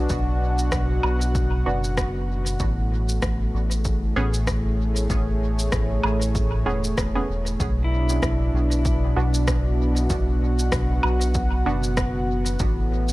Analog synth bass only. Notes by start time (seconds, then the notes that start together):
0.10 B1
0.72 B1
1.04 B1
1.66 F#1
2.60 A1
3.23 A1
3.54 A1
4.16 A1
5.10 A1
5.72 A1
6.04 A1
6.66 E1
6.98 E1
7.29 E1
7.60 B1
8.23 B1
8.54 B1
9.16 B1
10.10 B1
10.73 B1
11.04 B1
11.66 F#1
12.60 A1